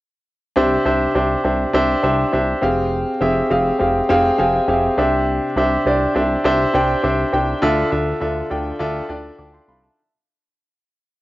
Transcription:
0.56 analog synth bass C2, grand piano C3 D4 G4 C5 E5
0.85 analog synth bass C2, grand piano D4 G4 C5 E5
1.15 analog synth bass C2, grand piano D4 G4 C5 E5
1.44 analog synth bass C2, grand piano D4 G4 C5 E5
1.73 analog synth bass C2, grand piano D4 G4 C5 E5
2.03 analog synth bass C2, grand piano D4 G4 C5 E5
2.32 analog synth bass C2, grand piano D4 G4 C5 E5
2.62 analog synth bass F1, grand piano C4 G4 G#4 F5
3.21 analog synth bass F1, grand piano C4 G4 G#4 E5
3.50 analog synth bass F1, grand piano C4 G4 G#4 F5
3.79 analog synth bass F1, grand piano C4 G4 G#4 F5
4.09 analog synth bass F1, grand piano C4 G4 G#4 F5
4.38 analog synth bass F1, grand piano C4 G4 G#4 F5 G#5
4.54 grand piano F5
4.68 analog synth bass F1, grand piano C4 G4 G#4 E5 F5
4.97 analog synth bass C2, grand piano C3 D4 G4 C5 E5
5.56 analog synth bass C2, grand piano D4 G4 C5 E5
5.85 analog synth bass C2, grand piano D4 G4 C5 D5
6.15 analog synth bass C2, grand piano D4 G4 C5 E5
6.44 analog synth bass C2, grand piano D4 G4 C5 E5
6.74 analog synth bass C2, grand piano D4 G4 C5 G5
7.03 analog synth bass C2, grand piano D4 G4 C5 E5
7.33 analog synth bass C2, grand piano D4 G4 C5 G5
7.62 analog synth bass D2, grand piano D3 D4 F4 A4 E5
7.91 analog synth bass D2, grand piano D4 F4 A4 E5
8.20 analog synth bass D2, grand piano D4 F4 A4 E5
8.50 analog synth bass D2, grand piano D4 F4 A4 G5
8.79 analog synth bass D2, grand piano D4 F4 A4 E5
9.09 analog synth bass D2, grand piano D4 F4 A4 D5 G5
9.38 analog synth bass D2, grand piano A5 D6
9.54 grand piano G5 C6
9.68 analog synth bass C2, grand piano F5 B5 C6
9.83 grand piano E5 A5

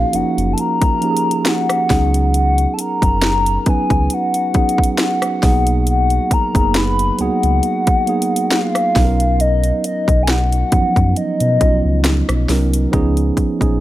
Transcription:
Already playing: tine electric piano F3 A#3 C#4 D#4 F4 F#4 G#4, soft synth lead F5
0.13 sub bass F#1, tine electric piano F3 A#3 C#4 D#4, soft synth lead F#5, closed hi-hat
0.38 sub bass F#1, closed hi-hat
0.53 soft synth lead A5
0.58 soft synth lead A#5, closed hi-hat
0.82 kick, closed hi-hat
1.01 tine electric piano F3 A#3 C#4 D#4 G4, closed hi-hat
1.11 tine electric piano G#4
1.17 closed hi-hat
1.31 closed hi-hat
1.45 soft synth lead F#5, snare, closed hi-hat
1.69 cross-stick, closed hi-hat
1.89 sub bass C#2, tine electric piano F#3 B3 C#4 D#4 G#4, kick, snare, open hi-hat
2.14 closed hi-hat
2.34 soft synth lead F#5, closed hi-hat
2.58 closed hi-hat
2.74 soft synth lead A5
2.79 soft synth lead A#5, closed hi-hat
3.02 sub bass F#1, kick, closed hi-hat
3.22 snare, closed hi-hat
3.46 closed hi-hat
3.66 sub bass C#2, tine electric piano F#3 B3 C#4 D#4 B4, soft synth lead G#5, kick, closed hi-hat
3.90 sub bass C#2, kick, closed hi-hat
4.10 soft synth lead F#5, closed hi-hat
4.34 closed hi-hat
4.54 tine electric piano F#3 B3 C#4 D#4 G#4, kick, closed hi-hat
4.69 closed hi-hat
4.78 kick
4.84 closed hi-hat
4.98 soft synth lead F#5, snare, closed hi-hat
5.22 cross-stick, closed hi-hat
5.42 sub bass B1, tine electric piano F#3 A#3 B3 D#4 G#4, kick, snare, open hi-hat
5.67 closed hi-hat
5.87 soft synth lead F#5, closed hi-hat
6.10 closed hi-hat
6.31 soft synth lead A#5, kick, closed hi-hat
6.54 sub bass F#1, tine electric piano F#3 A#3 B3 D#4 G#4, kick, closed hi-hat
6.74 soft synth lead B5, snare, closed hi-hat
6.99 closed hi-hat
7.18 sub bass C#2, tine electric piano F#3 A#3 B3 D#4 G#4, soft synth lead F#5, closed hi-hat
7.43 sub bass C#2, closed hi-hat
7.63 closed hi-hat
7.87 kick, closed hi-hat
8.06 tine electric piano F#3 A#3 B3 D#4 G#4, closed hi-hat
8.22 closed hi-hat
8.36 closed hi-hat
8.51 soft synth lead F5, snare, closed hi-hat
8.75 cross-stick, closed hi-hat
8.95 sub bass B1, tine electric piano F#3 B3 C#4 D#4 A4, kick, snare, open hi-hat
9.05 tine electric piano A#4
9.20 closed hi-hat
9.40 soft synth lead D#5, closed hi-hat
9.64 closed hi-hat
9.84 soft synth lead D#5, closed hi-hat
10.08 sub bass B1, kick, closed hi-hat
10.23 soft synth lead G#5
10.27 soft synth lead F#5, snare, closed hi-hat
10.52 closed hi-hat
10.71 sub bass F#2, tine electric piano F3 F#3 B3 C#4 D#4, kick, closed hi-hat
10.96 sub bass F#2, kick, closed hi-hat
11.16 soft synth lead D#5, closed hi-hat
11.40 sub bass B2, closed hi-hat
11.60 sub bass B1, tine electric piano F#3 B3 C#4 D#4 F4, kick, closed hi-hat
11.85 sub bass C#2
12.04 snare, closed hi-hat
12.29 sub bass B1, cross-stick, closed hi-hat
12.48 sub bass C2, tine electric piano F#3 B3 C#4 D#4 A#4, snare, open hi-hat
12.74 closed hi-hat
12.91 sub bass C#2, tine electric piano F3 B3 C#4 D#4 G#4, kick, closed hi-hat
13.17 closed hi-hat
13.37 kick, closed hi-hat
13.59 sub bass A#1, tine electric piano F3 B3 C#4 D#4 G#4, kick, closed hi-hat

